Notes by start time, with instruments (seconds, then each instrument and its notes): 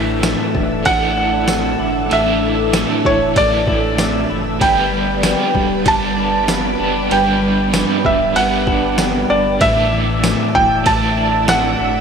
Already playing: sub bass A1, overdriven electric guitar A2 D3 E3 A3 E4, clean electric guitar A2 E3 A3 E4, string machine A3 D4 A4 E5, felt piano E5
0.23 clean electric guitar A3, snare, ride, tambourine
0.55 sub bass E1, clean electric guitar E3, kick
0.83 sub bass A1, overdriven electric guitar A2 D3, clean electric guitar A3, felt piano F#5, kick, ride
0.87 overdriven electric guitar E3 A3 E4
1.17 clean electric guitar E4
1.48 clean electric guitar A3, snare, ride, tambourine
1.79 sub bass G1, clean electric guitar E4
2.10 sub bass A1, overdriven electric guitar A2 D3 E3 A3 E4, clean electric guitar A2, felt piano E5, ride
2.42 clean electric guitar E3
2.72 overdriven electric guitar D3 E3 A3, clean electric guitar A3, snare, ride, tambourine
2.77 overdriven electric guitar E4
3.05 sub bass E1, clean electric guitar E3, felt piano C#5, kick
3.34 sub bass A1, overdriven electric guitar A2 D3 E3, clean electric guitar A3, felt piano D5, kick, ride
3.40 overdriven electric guitar A3 E4
3.67 clean electric guitar E4, kick
3.98 clean electric guitar A3, snare, ride, tambourine
4.30 sub bass F#1, clean electric guitar E4
4.59 sub bass G1, overdriven electric guitar G2 D3 G3 B3 D4, string machine G3 G4 B4 D5, felt piano G5, kick, ride
4.92 clean electric guitar G3
5.22 overdriven electric guitar D3 G3 B3, clean electric guitar B3, snare, ride, tambourine
5.27 overdriven electric guitar D4
5.54 sub bass D1, clean electric guitar G3, kick
5.85 sub bass G1, overdriven electric guitar G2 D3 G3 B3 D4, clean electric guitar B3, felt piano A5, kick, ride
6.16 clean electric guitar D4
6.48 clean electric guitar B3, snare, ride, tambourine
6.78 sub bass F#1, overdriven electric guitar B3 D4, clean electric guitar D4
6.83 overdriven electric guitar G3
7.10 sub bass G1, overdriven electric guitar G2 D3 G3 B3 D4, clean electric guitar G2, felt piano G5, ride
7.42 clean electric guitar G3
7.72 overdriven electric guitar D3 G3 B3, clean electric guitar B3, snare, ride, tambourine
7.77 overdriven electric guitar D4
8.04 sub bass D1, clean electric guitar G3, felt piano E5, kick
8.34 sub bass G1, overdriven electric guitar G2 D3, clean electric guitar B3, felt piano F#5, ride
8.38 overdriven electric guitar G3 B3 D4
8.67 clean electric guitar D4, kick
8.98 clean electric guitar B3, snare, ride, tambourine
9.30 sub bass G1, clean electric guitar D4, felt piano D5
9.59 sub bass A1, overdriven electric guitar A2 D3, clean electric guitar A2, string machine A3 A4 E5, felt piano E5, kick, ride
9.63 overdriven electric guitar E3 A3 D4
9.92 clean electric guitar E3
10.23 clean electric guitar A3, snare, ride, tambourine
10.55 sub bass E1, clean electric guitar E3, felt piano G5, kick
10.83 sub bass A1, overdriven electric guitar A2 D3, clean electric guitar A3, felt piano A5, kick, ride
10.88 overdriven electric guitar E3 A3 D4
11.18 clean electric guitar D4
11.48 clean electric guitar A3, felt piano F#5, snare, ride, tambourine
11.80 sub bass G1, clean electric guitar D4